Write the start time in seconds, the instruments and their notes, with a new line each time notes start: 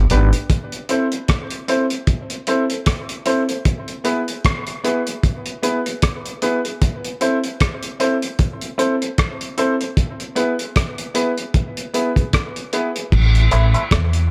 0.10 upright bass G#1, grand piano B3 D4 G4 B4, closed hi-hat
0.33 closed hi-hat
0.50 kick, closed hi-hat
0.72 closed hi-hat
0.89 grand piano C4 E4 A4 C5, closed hi-hat
1.12 closed hi-hat
1.28 kick, cross-stick, closed hi-hat
1.50 closed hi-hat
1.68 grand piano C4 E4 A4 C5, closed hi-hat
1.90 closed hi-hat
2.07 kick, closed hi-hat
2.30 closed hi-hat
2.47 grand piano C4 E4 A4 C5, closed hi-hat
2.70 grand piano A4 C5, closed hi-hat
2.86 kick, cross-stick, closed hi-hat
3.09 closed hi-hat
3.26 grand piano C4 E4 A4 C5, closed hi-hat
3.49 grand piano A4 C5, closed hi-hat
3.65 kick, closed hi-hat
3.88 closed hi-hat
4.04 grand piano B3 E4 G#4 B4, closed hi-hat
4.28 closed hi-hat
4.45 kick, cross-stick, closed hi-hat
4.67 closed hi-hat
4.84 grand piano B3 E4 G#4 B4, closed hi-hat
5.07 closed hi-hat
5.23 kick, closed hi-hat
5.46 closed hi-hat
5.62 grand piano B3 E4 G#4 B4, closed hi-hat
5.86 grand piano G#4 B4, closed hi-hat
6.02 kick, cross-stick, closed hi-hat
6.26 closed hi-hat
6.42 grand piano B3 E4 G#4 B4, closed hi-hat
6.65 grand piano G#4 B4, closed hi-hat
6.82 kick, closed hi-hat
7.04 closed hi-hat
7.21 grand piano C4 E4 A4 C5, closed hi-hat
7.44 closed hi-hat
7.60 kick, cross-stick, closed hi-hat
7.83 closed hi-hat
8.00 grand piano C4 E4 A4 C5, closed hi-hat
8.22 closed hi-hat
8.39 kick, closed hi-hat
8.61 closed hi-hat
8.78 grand piano C4 E4 A4 C5, closed hi-hat
9.01 grand piano A4 C5, closed hi-hat
9.18 kick, cross-stick, closed hi-hat
9.41 closed hi-hat
9.58 grand piano C4 E4 A4 C5, closed hi-hat
9.81 grand piano A4 C5, closed hi-hat
9.97 kick, closed hi-hat
10.20 closed hi-hat
10.35 grand piano B3 E4 G#4 B4, closed hi-hat
10.59 closed hi-hat
10.76 kick, cross-stick, closed hi-hat
10.98 closed hi-hat
11.14 grand piano B3 E4 G#4 B4, closed hi-hat
11.38 closed hi-hat
11.54 kick, closed hi-hat
11.77 closed hi-hat
11.94 grand piano B3 E4 G#4 B4, closed hi-hat
12.16 grand piano G#4 B4, kick, closed hi-hat
12.33 kick, cross-stick, closed hi-hat
12.56 closed hi-hat
12.73 grand piano B3 E4 G#4 B4, closed hi-hat
12.95 grand piano G#4 B4, closed hi-hat
13.12 upright bass A1, kick, crash
13.35 closed hi-hat
13.51 upright bass A1, clean electric guitar A3 C4 E4, closed hi-hat
13.74 clean electric guitar A3 C4 E4, closed hi-hat
13.91 upright bass E2, kick, cross-stick, closed hi-hat
14.13 closed hi-hat